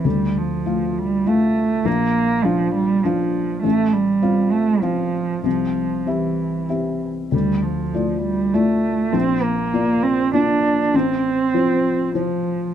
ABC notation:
X:1
M:3/4
L:1/8
Q:1/4=99
K:Dm
V:1 name="Felt piano"
D,,2 [A,Ff]2 [A,Ff]2 | B,,,2 [DFf]2 [DFf]2 | A,,,2 [CFf]2 [CFf]2 | C,,2 [CGe]2 [CGe]2 |
D,,2 [A,Fd]2 [A,Fd]2 | B,,,2 [B,Fd]2 [B,Fd]2 | A,,,2 [F,Fc]2 [F,Fc]2 |]
V:2 name="Cello" clef=bass
G, F,2 G, A,2 | B,2 F, G, F,2 | A, G,2 A, F,2 | F,2 E,3 z |
G, F,2 G, A,2 | C B,2 C D2 | C4 F,2 |]